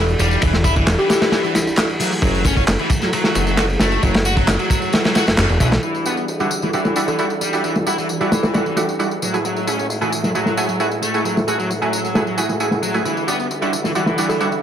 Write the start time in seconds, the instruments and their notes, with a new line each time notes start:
Already playing: analog synth bass E1, tonewheel organ E3 G3 D4 F#4
0.09 tambourine
0.19 analog synth bass E1, distorted electric guitar G3, ride, tambourine
0.31 tambourine
0.42 analog synth bass E1, distorted electric guitar E3, kick, ride, tambourine
0.53 snare, tambourine
0.64 distorted electric guitar E4, kick, ride, tambourine
0.76 distorted electric guitar E3, kick, tambourine
0.87 analog synth bass E1, snare, clap, ride, tambourine
0.98 distorted electric guitar E3, kalimba G4, ride, tambourine
1.09 kalimba G4, snare, ride, tambourine
1.22 snare, ride, tambourine
1.32 snare, ride, tambourine
1.44 distorted electric guitar E3, tambourine
1.55 kalimba E4, snare, ride, tambourine
1.67 kalimba E4, tambourine
1.76 snare, clap, ride, tambourine
1.90 tambourine
2.00 distorted electric guitar F#3, tonewheel organ G#3 A3, open hi-hat, tambourine
2.12 tambourine
2.22 analog synth bass F#1, distorted electric guitar F#3, kick, ride, tambourine
2.34 tambourine
2.45 distorted electric guitar C#4, kick, ride, tambourine
2.57 distorted electric guitar C#4, kick, tambourine
2.67 analog synth bass F#1, snare, clap, ride, tambourine
2.79 distorted electric guitar E3, ride, tambourine
2.90 kick, ride, tambourine
3.02 distorted electric guitar F#3, snare, tambourine
3.13 distorted electric guitar F#3, ride, tambourine
3.24 snare, tambourine
3.35 analog synth bass F#1, ride, tambourine
3.47 distorted electric guitar F#3, tambourine
3.57 distorted electric guitar F#4, snare, clap, ride, tambourine
3.69 tambourine
3.79 analog synth bass F#1, distorted electric guitar A3, snare, ride, tambourine
3.92 ride, tambourine
4.03 analog synth bass F#1, distorted electric guitar F#3, kick, ride, tambourine
4.14 snare, ride, tambourine
4.25 distorted electric guitar F#4, ride, tambourine
4.37 distorted electric guitar F#3, kick, ride, tambourine
4.47 analog synth bass F#1, snare, clap, ride, tambourine
4.59 distorted electric guitar F#3, ride, tambourine
4.70 kick, ride, tambourine
4.82 tambourine
4.93 snare, ride, tambourine
5.04 distorted electric guitar F#3, snare, ride, tambourine
5.15 distorted electric guitar F#4, snare, ride, tambourine
5.27 analog synth bass F#1, snare, ride, tambourine
5.38 analog synth bass F#1, snare, clap, ride, tambourine
5.49 analog synth bass E1, ride, tambourine
5.60 analog synth bass B1, distorted electric guitar E3, kick, ride, tambourine
5.72 snare, ride, tambourine
5.83 distorted electric guitar E3, tonewheel organ E3 G3 D4 F#4, ride, tambourine
5.95 tambourine
6.05 synth stab G3 D4 E4 F#4, distorted electric guitar B3, ride, tambourine
6.17 distorted electric guitar B3, tambourine
6.28 ride, tambourine
6.40 distorted electric guitar D3, synth stab G3 D4 E4 F#4, ride, tambourine
6.51 ride, tambourine
6.62 distorted electric guitar E3, snare, tambourine
6.73 distorted electric guitar E3, synth stab G3 D4 E4 F#4, ride, tambourine
6.85 snare, tambourine
6.96 synth stab G3 D4 E4 F#4, ride, tambourine
7.08 distorted electric guitar E3, kalimba A4, tambourine
7.19 synth stab G3 D4 E4 F#4, distorted electric guitar E4, ride, tambourine
7.30 tambourine
7.41 distorted electric guitar G3, ride, tambourine
7.53 synth stab G3 D4 E4 F#4, tambourine
7.63 distorted electric guitar E3, ride, tambourine
7.76 snare, tambourine
7.86 synth stab G3 D4 E4 F#4, distorted electric guitar E4, ride, tambourine
7.98 distorted electric guitar E3, tambourine
8.09 ride, tambourine
8.20 distorted electric guitar E3, synth stab G3 D4 E4 F#4, ride, tambourine
8.32 snare, ride, tambourine
8.42 kalimba A4, snare, ride, tambourine
8.54 synth stab G3 D4 E4 F#4, kalimba A4, snare, ride, tambourine
8.66 distorted electric guitar E3, tambourine
8.76 synth stab G3 D4 E4 F#4, snare, ride, tambourine
8.89 tambourine
8.99 synth stab G3 D4 E4 F#4, ride, tambourine
9.11 tambourine
9.22 tonewheel organ A2 G#3 E4, distorted electric guitar F#3, open hi-hat, tambourine
9.33 synth stab A3 E4 F#4 G#4, tambourine
9.44 distorted electric guitar F#3, ride, tambourine
9.56 tambourine
9.67 synth stab A3 E4 F#4 G#4, distorted electric guitar C#4, ride, tambourine
9.79 distorted electric guitar C#4, tambourine
9.89 ride, tambourine
10.01 distorted electric guitar E3, synth stab A3 E4 F#4 G#4, ride, tambourine
10.12 ride, tambourine
10.23 distorted electric guitar F#3, snare, tambourine
10.35 distorted electric guitar F#3, synth stab A3 E4 F#4 G#4, ride, tambourine
10.46 snare, tambourine
10.57 synth stab A3 E4 F#4 G#4, ride, tambourine
10.69 distorted electric guitar F#3, tambourine
10.80 synth stab A3 E4 F#4 G#4, distorted electric guitar F#4, ride, tambourine
10.91 tambourine
11.02 distorted electric guitar A3, ride, tambourine
11.14 synth stab A3 E4 F#4 G#4, tambourine
11.25 distorted electric guitar F#3, ride, tambourine
11.37 snare, tambourine
11.48 synth stab A3 E4 F#4 G#4, distorted electric guitar F#4, ride, tambourine
11.59 distorted electric guitar F#3, tambourine
11.70 ride, tambourine
11.81 distorted electric guitar F#3, synth stab A3 E4 F#4 G#4, ride, tambourine
11.92 ride, tambourine
12.04 tambourine
12.15 synth stab A3 E4 F#4 G#4, snare, ride, tambourine
12.27 distorted electric guitar F#3, ride, tambourine
12.37 synth stab A3 E4 F#4 G#4, ride, tambourine
12.49 snare, tambourine
12.60 synth stab A3 E4 F#4 G#4, ride, tambourine
12.71 snare, tambourine
12.83 distorted electric guitar F#3, open hi-hat, tambourine
12.94 synth stab A3 E4 F#4 G#4, tambourine
13.05 tonewheel organ D3 G3 E4, distorted electric guitar E3, ride, tambourine
13.17 tambourine
13.27 synth stab G3 D4 E4 F#4, distorted electric guitar B3, ride, tambourine
13.40 distorted electric guitar B3, tambourine
13.51 ride, tambourine
13.61 distorted electric guitar D3, synth stab G3 D4 E4 F#4, ride, tambourine
13.72 ride, tambourine
13.84 distorted electric guitar E3, snare, tambourine
13.95 distorted electric guitar E3, synth stab G3 D4 E4 F#4, ride, tambourine
14.06 snare, tambourine
14.18 synth stab G3 D4 E4 F#4, ride, tambourine
14.29 distorted electric guitar E3, kalimba A4, tambourine
14.40 synth stab G3 D4 E4 F#4, distorted electric guitar E4, ride, tambourine
14.52 tambourine